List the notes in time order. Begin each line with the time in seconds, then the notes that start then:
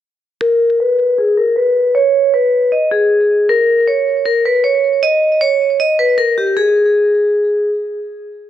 0.41 A#4
0.80 B4
1.18 G#4
1.37 A#4
1.56 B4
1.95 C#5
2.34 B4
2.72 D#5
2.92 G#4
3.49 A#4
3.87 C#5
4.26 A#4
4.45 B4
4.64 C#5
5.03 D#5
5.41 C#5
5.80 D#5
5.99 B4
6.18 A#4
6.38 G4
6.57 G#4